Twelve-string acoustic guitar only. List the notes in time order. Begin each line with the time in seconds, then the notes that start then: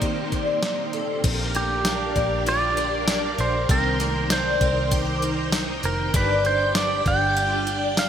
0.01 D#4
0.32 D4
0.63 D#4
0.93 A4
1.24 C4
1.55 A#3
1.85 D4
2.16 A#3
2.46 F4
2.77 D4
3.08 D4
3.38 A#3
3.69 C4
4.00 A#3
4.30 D4
4.61 C4
4.91 G4
5.22 D#4
5.53 D#4
5.84 C4
6.14 D4
6.45 B2
6.75 D4
7.06 B3
7.37 F4
7.67 D4
7.98 D4